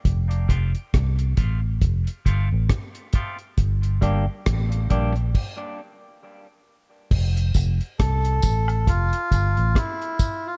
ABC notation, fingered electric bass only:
X:1
M:4/4
L:1/16
Q:"Swing 16ths" 1/4=68
K:F
V:1 name="Fingered electric bass" clef=bass
F,,,2 F,,, z C,,2 A,,,2 F,,, z G,,, A,,, z4 | G,,,2 G,,, z A,,,2 B,,,2 z8 | F,,,2 F,,, z C,,2 A,,,2 F,,, z G,,, A,,, z4 |]